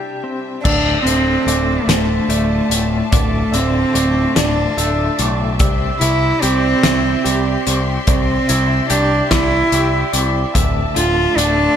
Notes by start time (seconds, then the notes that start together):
Already playing: C3 G3 D4 E4 G4 E5
0.24 C4
0.63 D1 D2 D4 F4 D5 E5 A5, kick, crash
1.02 D1 D3 C4
1.07 closed hi-hat
1.47 D1 A3 D5, closed hi-hat
1.85 D1 D3 A3 C5
1.89 snare, closed hi-hat
2.29 D1 A3 D5, closed hi-hat
2.70 D1 A2, closed hi-hat
3.11 D1 D2 A3 D5, kick, closed hi-hat
3.52 D1 D3 C4 E5, closed hi-hat
3.94 D1 A3 D5, closed hi-hat
4.36 D1 D3 D4, snare, closed hi-hat
4.77 D1 A3 E5, closed hi-hat
5.18 B1 A2 D5, closed hi-hat
5.59 C2 C3 G4 E5 C6, kick, closed hi-hat
6.00 C2 E4, closed hi-hat
6.42 C2 C4 G4 D5, closed hi-hat
6.83 C2 E4 C5, snare, closed hi-hat
7.24 C2 G4 D5, closed hi-hat
7.66 C2 C4, closed hi-hat
8.07 C2 C3 C4 D5, kick, closed hi-hat
8.47 C2 E4 E5, closed hi-hat
8.89 C2 D4 G4 D5, closed hi-hat
9.31 C2 E4, kick, snare, closed hi-hat
9.72 C2 G4 E5, closed hi-hat
10.12 C2 C4 D5, closed hi-hat
10.53 D1 D2 F3 E5 A5, kick, closed hi-hat
10.96 D1 D3 F4, closed hi-hat
11.36 D1 A3 D4 D5, closed hi-hat